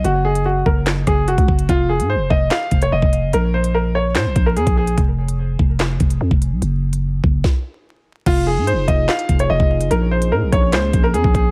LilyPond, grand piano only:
\new Staff \with { instrumentName = "Grand piano" } { \time 4/4 \key f \phrygian \tempo 4 = 146 ges'8 aes'8 ges'8 bes'8 r8 aes'8 ges'4 | f'8 aes'8 c''8 ees''8 f''8. des''16 ees''4 | bes'8 c''8 bes'8 des''8 c''8. bes'16 aes'8 aes'8 | r1 |
r1 | f'8 aes'8 c''8 ees''8 f''8. des''16 ees''4 | bes'8 c''8 bes'8 des''8 c''8. bes'16 aes'8 aes'8 | }